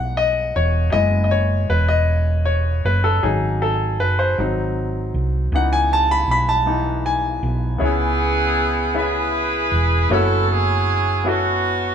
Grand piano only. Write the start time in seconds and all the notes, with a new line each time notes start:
Already playing: E3 B3 D#4 F#5
0.17 D#5
0.56 C#5
0.92 G#3 B3 E4 D#5
1.24 D#5
1.31 C#5
1.70 B4
1.89 D#5
2.45 C#5
2.86 B4
3.04 A4
3.22 F#3 C#4 D#4 G#4
3.62 A4
4.00 B4
4.19 C5
4.38 F#3 C4 D#4
5.54 E3 B3 D#4 F#5
5.73 G#5
5.93 A5
6.11 B5
6.31 B5
6.49 A5
6.66 E3 B3 D#4
7.06 G#5
7.78 C#3 B3 C#4 E4 G#4 C#5
8.94 B3 C#4 E4 G#4 E5
10.09 A#3 C#4 E4 F#4 C#5
10.15 B3
11.24 B3 C#4 E4 F#4 A4